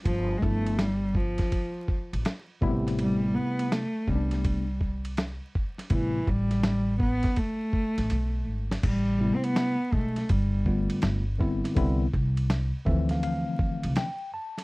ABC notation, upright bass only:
X:1
M:4/4
L:1/16
Q:"Swing 16ths" 1/4=82
K:Am
V:1 name="Upright bass" clef=bass
G,,,2 G,,,4- G,,, z4 A,,, z2 A,,,2- | A,,,3 z3 C,,6- C,, z3 | A,,,2 A,,,4- A,,, z4 A,,, B,,,2 ^G,,,2 | A,,,3 z3 B,,,2 G,,,4 G,,,4 |
C,,2 C,,4 D,,4 z C,, z4 |]